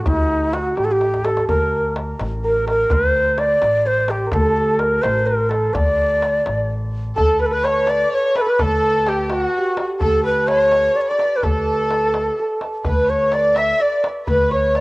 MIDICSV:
0, 0, Header, 1, 6, 480
1, 0, Start_track
1, 0, Tempo, 473934
1, 60, Time_signature, 6, 3, 24, 8
1, 14993, End_track
2, 0, Start_track
2, 0, Title_t, "Ney"
2, 0, Program_c, 0, 77
2, 57, Note_on_c, 0, 63, 89
2, 544, Note_on_c, 0, 66, 78
2, 559, Note_off_c, 0, 63, 0
2, 771, Note_on_c, 0, 67, 79
2, 786, Note_off_c, 0, 66, 0
2, 856, Note_on_c, 0, 69, 66
2, 871, Note_off_c, 0, 67, 0
2, 931, Note_on_c, 0, 67, 80
2, 946, Note_off_c, 0, 69, 0
2, 1266, Note_on_c, 0, 69, 79
2, 1281, Note_off_c, 0, 67, 0
2, 1492, Note_off_c, 0, 69, 0
2, 1499, Note_on_c, 0, 70, 80
2, 1946, Note_off_c, 0, 70, 0
2, 2479, Note_on_c, 0, 70, 78
2, 2693, Note_off_c, 0, 70, 0
2, 2716, Note_on_c, 0, 70, 88
2, 2963, Note_on_c, 0, 72, 91
2, 2978, Note_off_c, 0, 70, 0
2, 3431, Note_on_c, 0, 74, 106
2, 3446, Note_off_c, 0, 72, 0
2, 3915, Note_on_c, 0, 72, 91
2, 3931, Note_off_c, 0, 74, 0
2, 4156, Note_on_c, 0, 67, 77
2, 4171, Note_off_c, 0, 72, 0
2, 4379, Note_off_c, 0, 67, 0
2, 4385, Note_on_c, 0, 69, 90
2, 4856, Note_on_c, 0, 70, 87
2, 4871, Note_off_c, 0, 69, 0
2, 5085, Note_on_c, 0, 72, 94
2, 5100, Note_off_c, 0, 70, 0
2, 5335, Note_on_c, 0, 70, 81
2, 5350, Note_off_c, 0, 72, 0
2, 5570, Note_on_c, 0, 69, 80
2, 5585, Note_off_c, 0, 70, 0
2, 5811, Note_on_c, 0, 74, 97
2, 5826, Note_off_c, 0, 69, 0
2, 6777, Note_off_c, 0, 74, 0
2, 7271, Note_on_c, 0, 69, 85
2, 7490, Note_off_c, 0, 69, 0
2, 7502, Note_on_c, 0, 71, 82
2, 7557, Note_on_c, 0, 69, 67
2, 7572, Note_off_c, 0, 71, 0
2, 7625, Note_on_c, 0, 71, 94
2, 7640, Note_off_c, 0, 69, 0
2, 7743, Note_on_c, 0, 73, 94
2, 7758, Note_off_c, 0, 71, 0
2, 7996, Note_on_c, 0, 74, 106
2, 8011, Note_off_c, 0, 73, 0
2, 8230, Note_off_c, 0, 74, 0
2, 8238, Note_on_c, 0, 73, 92
2, 8454, Note_off_c, 0, 73, 0
2, 8477, Note_on_c, 0, 71, 87
2, 8519, Note_on_c, 0, 69, 68
2, 8535, Note_off_c, 0, 71, 0
2, 8600, Note_on_c, 0, 71, 89
2, 8615, Note_off_c, 0, 69, 0
2, 8728, Note_on_c, 0, 69, 91
2, 8743, Note_off_c, 0, 71, 0
2, 9202, Note_on_c, 0, 67, 83
2, 9217, Note_off_c, 0, 69, 0
2, 9376, Note_off_c, 0, 67, 0
2, 9376, Note_on_c, 0, 67, 60
2, 9443, Note_on_c, 0, 66, 89
2, 9459, Note_off_c, 0, 67, 0
2, 9973, Note_off_c, 0, 66, 0
2, 10146, Note_on_c, 0, 69, 91
2, 10368, Note_off_c, 0, 69, 0
2, 10381, Note_on_c, 0, 71, 88
2, 10611, Note_on_c, 0, 73, 106
2, 10626, Note_off_c, 0, 71, 0
2, 11098, Note_on_c, 0, 74, 84
2, 11113, Note_off_c, 0, 73, 0
2, 11152, Note_on_c, 0, 73, 74
2, 11168, Note_off_c, 0, 74, 0
2, 11230, Note_on_c, 0, 74, 87
2, 11245, Note_off_c, 0, 73, 0
2, 11508, Note_on_c, 0, 71, 58
2, 11523, Note_off_c, 0, 74, 0
2, 11582, Note_on_c, 0, 69, 83
2, 11597, Note_off_c, 0, 71, 0
2, 12781, Note_off_c, 0, 69, 0
2, 13026, Note_on_c, 0, 71, 73
2, 13269, Note_on_c, 0, 73, 82
2, 13284, Note_off_c, 0, 71, 0
2, 13508, Note_on_c, 0, 74, 85
2, 13523, Note_off_c, 0, 73, 0
2, 13751, Note_on_c, 0, 76, 88
2, 13766, Note_off_c, 0, 74, 0
2, 13990, Note_on_c, 0, 74, 81
2, 14005, Note_off_c, 0, 76, 0
2, 14224, Note_off_c, 0, 74, 0
2, 14462, Note_on_c, 0, 71, 82
2, 14682, Note_off_c, 0, 71, 0
2, 14709, Note_on_c, 0, 73, 79
2, 14949, Note_on_c, 0, 74, 91
2, 14964, Note_off_c, 0, 73, 0
2, 14993, Note_off_c, 0, 74, 0
2, 14993, End_track
3, 0, Start_track
3, 0, Title_t, "Santur"
3, 0, Program_c, 1, 15
3, 0, Note_on_c, 1, 66, 62
3, 0, Note_on_c, 1, 69, 70
3, 63, Note_on_c, 1, 63, 64
3, 525, Note_off_c, 1, 66, 0
3, 529, Note_on_c, 1, 66, 69
3, 778, Note_on_c, 1, 67, 67
3, 838, Note_off_c, 1, 66, 0
3, 912, Note_off_c, 1, 67, 0
3, 916, Note_on_c, 1, 67, 73
3, 1249, Note_off_c, 1, 69, 0
3, 1253, Note_on_c, 1, 69, 62
3, 1509, Note_on_c, 1, 70, 65
3, 1570, Note_off_c, 1, 69, 0
3, 2469, Note_off_c, 1, 70, 0
3, 2473, Note_on_c, 1, 70, 64
3, 2698, Note_off_c, 1, 70, 0
3, 2702, Note_on_c, 1, 70, 61
3, 2941, Note_on_c, 1, 72, 78
3, 3421, Note_on_c, 1, 74, 84
3, 3482, Note_off_c, 1, 63, 0
3, 3899, Note_off_c, 1, 72, 0
3, 3903, Note_on_c, 1, 72, 72
3, 4097, Note_off_c, 1, 67, 0
3, 4136, Note_on_c, 1, 67, 62
3, 4312, Note_off_c, 1, 70, 0
3, 4316, Note_on_c, 1, 70, 53
3, 4381, Note_on_c, 1, 69, 75
3, 4442, Note_off_c, 1, 70, 0
3, 4615, Note_off_c, 1, 69, 0
3, 4619, Note_on_c, 1, 69, 77
3, 4849, Note_on_c, 1, 70, 76
3, 4910, Note_off_c, 1, 69, 0
3, 5085, Note_off_c, 1, 72, 0
3, 5089, Note_on_c, 1, 72, 76
3, 5318, Note_off_c, 1, 70, 0
3, 5322, Note_on_c, 1, 70, 70
3, 5560, Note_on_c, 1, 69, 65
3, 5621, Note_off_c, 1, 70, 0
3, 5802, Note_off_c, 1, 74, 0
3, 5806, Note_on_c, 1, 74, 71
3, 7246, Note_off_c, 1, 69, 0
3, 7250, Note_on_c, 1, 69, 81
3, 7317, Note_off_c, 1, 67, 0
3, 7486, Note_on_c, 1, 71, 81
3, 7546, Note_off_c, 1, 72, 0
3, 7602, Note_off_c, 1, 71, 0
3, 7606, Note_on_c, 1, 71, 72
3, 7724, Note_on_c, 1, 73, 78
3, 7785, Note_off_c, 1, 74, 0
3, 7886, Note_on_c, 1, 76, 55
3, 7962, Note_on_c, 1, 74, 75
3, 8023, Note_off_c, 1, 73, 0
3, 8568, Note_off_c, 1, 71, 0
3, 8572, Note_on_c, 1, 71, 71
3, 8694, Note_off_c, 1, 69, 0
3, 8698, Note_on_c, 1, 69, 68
3, 9415, Note_on_c, 1, 66, 69
3, 9703, Note_on_c, 1, 67, 66
3, 9764, Note_off_c, 1, 66, 0
3, 10120, Note_off_c, 1, 69, 0
3, 10124, Note_on_c, 1, 69, 75
3, 10210, Note_off_c, 1, 76, 0
3, 10364, Note_off_c, 1, 71, 0
3, 10368, Note_on_c, 1, 71, 87
3, 10456, Note_off_c, 1, 74, 0
3, 10606, Note_on_c, 1, 73, 75
3, 10804, Note_on_c, 1, 74, 54
3, 10843, Note_off_c, 1, 73, 0
3, 10847, Note_on_c, 1, 73, 79
3, 10908, Note_off_c, 1, 74, 0
3, 11092, Note_on_c, 1, 74, 73
3, 11153, Note_off_c, 1, 73, 0
3, 11244, Note_off_c, 1, 74, 0
3, 11248, Note_on_c, 1, 74, 90
3, 11325, Note_on_c, 1, 76, 68
3, 11391, Note_off_c, 1, 74, 0
3, 11395, Note_on_c, 1, 74, 62
3, 11516, Note_off_c, 1, 71, 0
3, 11520, Note_on_c, 1, 71, 55
3, 11594, Note_off_c, 1, 69, 0
3, 11598, Note_on_c, 1, 69, 71
3, 12546, Note_off_c, 1, 69, 0
3, 12550, Note_on_c, 1, 69, 57
3, 12884, Note_off_c, 1, 67, 0
3, 13010, Note_off_c, 1, 71, 0
3, 13014, Note_on_c, 1, 71, 59
3, 13263, Note_on_c, 1, 73, 74
3, 13323, Note_off_c, 1, 74, 0
3, 13505, Note_on_c, 1, 74, 67
3, 13566, Note_off_c, 1, 73, 0
3, 13649, Note_off_c, 1, 76, 0
3, 13740, Note_on_c, 1, 76, 81
3, 13971, Note_off_c, 1, 74, 0
3, 13975, Note_on_c, 1, 74, 61
3, 14448, Note_off_c, 1, 71, 0
3, 14452, Note_on_c, 1, 71, 70
3, 14695, Note_on_c, 1, 73, 80
3, 14755, Note_off_c, 1, 74, 0
3, 14993, Note_off_c, 1, 69, 0
3, 14993, Note_off_c, 1, 71, 0
3, 14993, Note_off_c, 1, 73, 0
3, 14993, Note_off_c, 1, 76, 0
3, 14993, End_track
4, 0, Start_track
4, 0, Title_t, "Violin section"
4, 0, Program_c, 2, 48
4, 7265, Note_on_c, 2, 69, 86
4, 7487, Note_off_c, 2, 69, 0
4, 7494, Note_on_c, 2, 71, 77
4, 7610, Note_off_c, 2, 71, 0
4, 7622, Note_on_c, 2, 71, 77
4, 7734, Note_off_c, 2, 71, 0
4, 7753, Note_on_c, 2, 73, 78
4, 7988, Note_off_c, 2, 73, 0
4, 8000, Note_on_c, 2, 74, 82
4, 8232, Note_off_c, 2, 74, 0
4, 8237, Note_on_c, 2, 73, 88
4, 8470, Note_off_c, 2, 73, 0
4, 8477, Note_on_c, 2, 71, 85
4, 8710, Note_off_c, 2, 71, 0
4, 8715, Note_on_c, 2, 69, 90
4, 9189, Note_off_c, 2, 69, 0
4, 9199, Note_on_c, 2, 67, 76
4, 9431, Note_off_c, 2, 67, 0
4, 9441, Note_on_c, 2, 67, 77
4, 9553, Note_off_c, 2, 67, 0
4, 9553, Note_on_c, 2, 66, 77
4, 9972, Note_off_c, 2, 66, 0
4, 10140, Note_on_c, 2, 69, 86
4, 10365, Note_off_c, 2, 69, 0
4, 10380, Note_on_c, 2, 71, 74
4, 10605, Note_off_c, 2, 71, 0
4, 10622, Note_on_c, 2, 73, 87
4, 11204, Note_off_c, 2, 73, 0
4, 11241, Note_on_c, 2, 74, 73
4, 11580, Note_off_c, 2, 74, 0
4, 11582, Note_on_c, 2, 69, 76
4, 12780, Note_off_c, 2, 69, 0
4, 13026, Note_on_c, 2, 71, 70
4, 13246, Note_off_c, 2, 71, 0
4, 13259, Note_on_c, 2, 73, 66
4, 13499, Note_off_c, 2, 73, 0
4, 13504, Note_on_c, 2, 74, 80
4, 13741, Note_off_c, 2, 74, 0
4, 13743, Note_on_c, 2, 76, 81
4, 13980, Note_off_c, 2, 76, 0
4, 13982, Note_on_c, 2, 74, 76
4, 14219, Note_off_c, 2, 74, 0
4, 14458, Note_on_c, 2, 71, 76
4, 14680, Note_off_c, 2, 71, 0
4, 14695, Note_on_c, 2, 73, 76
4, 14993, Note_off_c, 2, 73, 0
4, 14993, End_track
5, 0, Start_track
5, 0, Title_t, "Upright bass"
5, 0, Program_c, 3, 32
5, 66, Note_on_c, 3, 38, 91
5, 706, Note_off_c, 3, 38, 0
5, 782, Note_on_c, 3, 33, 71
5, 1424, Note_off_c, 3, 33, 0
5, 1506, Note_on_c, 3, 38, 83
5, 2146, Note_off_c, 3, 38, 0
5, 2233, Note_on_c, 3, 33, 81
5, 2870, Note_off_c, 3, 33, 0
5, 2944, Note_on_c, 3, 38, 86
5, 3585, Note_off_c, 3, 38, 0
5, 3668, Note_on_c, 3, 33, 84
5, 4308, Note_off_c, 3, 33, 0
5, 4386, Note_on_c, 3, 38, 95
5, 5026, Note_off_c, 3, 38, 0
5, 5106, Note_on_c, 3, 33, 86
5, 5747, Note_off_c, 3, 33, 0
5, 5821, Note_on_c, 3, 38, 90
5, 6464, Note_off_c, 3, 38, 0
5, 6551, Note_on_c, 3, 33, 73
5, 7190, Note_off_c, 3, 33, 0
5, 7268, Note_on_c, 3, 38, 74
5, 8122, Note_off_c, 3, 38, 0
5, 8709, Note_on_c, 3, 38, 79
5, 9563, Note_off_c, 3, 38, 0
5, 10145, Note_on_c, 3, 38, 80
5, 11000, Note_off_c, 3, 38, 0
5, 11578, Note_on_c, 3, 38, 79
5, 12436, Note_off_c, 3, 38, 0
5, 13023, Note_on_c, 3, 38, 74
5, 13877, Note_off_c, 3, 38, 0
5, 14459, Note_on_c, 3, 38, 85
5, 14993, Note_off_c, 3, 38, 0
5, 14993, End_track
6, 0, Start_track
6, 0, Title_t, "Tombak"
6, 58, Note_on_c, 9, 64, 94
6, 159, Note_off_c, 9, 64, 0
6, 308, Note_on_c, 9, 62, 27
6, 410, Note_off_c, 9, 62, 0
6, 540, Note_on_c, 9, 63, 65
6, 641, Note_off_c, 9, 63, 0
6, 780, Note_on_c, 9, 63, 60
6, 881, Note_off_c, 9, 63, 0
6, 1022, Note_on_c, 9, 63, 48
6, 1123, Note_off_c, 9, 63, 0
6, 1151, Note_on_c, 9, 62, 63
6, 1252, Note_off_c, 9, 62, 0
6, 1261, Note_on_c, 9, 63, 68
6, 1362, Note_off_c, 9, 63, 0
6, 1386, Note_on_c, 9, 62, 75
6, 1487, Note_off_c, 9, 62, 0
6, 1506, Note_on_c, 9, 64, 84
6, 1608, Note_off_c, 9, 64, 0
6, 1985, Note_on_c, 9, 63, 65
6, 2086, Note_off_c, 9, 63, 0
6, 2223, Note_on_c, 9, 63, 61
6, 2325, Note_off_c, 9, 63, 0
6, 2710, Note_on_c, 9, 63, 62
6, 2811, Note_off_c, 9, 63, 0
6, 2937, Note_on_c, 9, 64, 90
6, 3038, Note_off_c, 9, 64, 0
6, 3184, Note_on_c, 9, 62, 29
6, 3285, Note_off_c, 9, 62, 0
6, 3420, Note_on_c, 9, 63, 66
6, 3521, Note_off_c, 9, 63, 0
6, 3663, Note_on_c, 9, 63, 68
6, 3764, Note_off_c, 9, 63, 0
6, 4134, Note_on_c, 9, 63, 70
6, 4235, Note_off_c, 9, 63, 0
6, 4371, Note_on_c, 9, 64, 104
6, 4473, Note_off_c, 9, 64, 0
6, 4614, Note_on_c, 9, 62, 30
6, 4715, Note_off_c, 9, 62, 0
6, 4853, Note_on_c, 9, 63, 69
6, 4954, Note_off_c, 9, 63, 0
6, 5098, Note_on_c, 9, 63, 74
6, 5199, Note_off_c, 9, 63, 0
6, 5579, Note_on_c, 9, 63, 63
6, 5681, Note_off_c, 9, 63, 0
6, 5821, Note_on_c, 9, 64, 94
6, 5922, Note_off_c, 9, 64, 0
6, 6303, Note_on_c, 9, 63, 64
6, 6405, Note_off_c, 9, 63, 0
6, 6542, Note_on_c, 9, 63, 63
6, 6643, Note_off_c, 9, 63, 0
6, 6786, Note_on_c, 9, 62, 22
6, 6888, Note_off_c, 9, 62, 0
6, 7266, Note_on_c, 9, 64, 81
6, 7367, Note_off_c, 9, 64, 0
6, 7743, Note_on_c, 9, 63, 67
6, 7844, Note_off_c, 9, 63, 0
6, 7972, Note_on_c, 9, 63, 73
6, 8073, Note_off_c, 9, 63, 0
6, 8225, Note_on_c, 9, 62, 26
6, 8326, Note_off_c, 9, 62, 0
6, 8463, Note_on_c, 9, 63, 76
6, 8564, Note_off_c, 9, 63, 0
6, 8702, Note_on_c, 9, 64, 94
6, 8803, Note_off_c, 9, 64, 0
6, 9181, Note_on_c, 9, 63, 67
6, 9282, Note_off_c, 9, 63, 0
6, 9415, Note_on_c, 9, 63, 70
6, 9517, Note_off_c, 9, 63, 0
6, 9657, Note_on_c, 9, 62, 29
6, 9759, Note_off_c, 9, 62, 0
6, 9897, Note_on_c, 9, 63, 75
6, 9998, Note_off_c, 9, 63, 0
6, 10135, Note_on_c, 9, 64, 85
6, 10237, Note_off_c, 9, 64, 0
6, 10615, Note_on_c, 9, 63, 72
6, 10717, Note_off_c, 9, 63, 0
6, 10853, Note_on_c, 9, 63, 68
6, 10954, Note_off_c, 9, 63, 0
6, 11102, Note_on_c, 9, 62, 28
6, 11204, Note_off_c, 9, 62, 0
6, 11336, Note_on_c, 9, 63, 60
6, 11438, Note_off_c, 9, 63, 0
6, 11576, Note_on_c, 9, 64, 79
6, 11678, Note_off_c, 9, 64, 0
6, 12058, Note_on_c, 9, 63, 64
6, 12159, Note_off_c, 9, 63, 0
6, 12294, Note_on_c, 9, 63, 63
6, 12395, Note_off_c, 9, 63, 0
6, 12772, Note_on_c, 9, 63, 64
6, 12873, Note_off_c, 9, 63, 0
6, 13010, Note_on_c, 9, 64, 89
6, 13111, Note_off_c, 9, 64, 0
6, 13489, Note_on_c, 9, 63, 64
6, 13590, Note_off_c, 9, 63, 0
6, 13733, Note_on_c, 9, 63, 70
6, 13835, Note_off_c, 9, 63, 0
6, 13978, Note_on_c, 9, 62, 23
6, 14079, Note_off_c, 9, 62, 0
6, 14219, Note_on_c, 9, 63, 67
6, 14320, Note_off_c, 9, 63, 0
6, 14456, Note_on_c, 9, 64, 76
6, 14558, Note_off_c, 9, 64, 0
6, 14939, Note_on_c, 9, 63, 61
6, 14993, Note_off_c, 9, 63, 0
6, 14993, End_track
0, 0, End_of_file